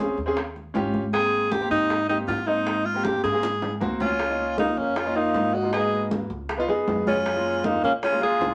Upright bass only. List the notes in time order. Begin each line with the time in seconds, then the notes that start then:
Already playing: A#1
0.17 D#2
0.75 G#1
1.71 G#2
2.28 G#2
3.24 G#2
3.81 C#2
4.77 F2
5.34 G#2
6.30 C#2
6.68 F2
6.87 F#2
7.83 A#2
8.41 C2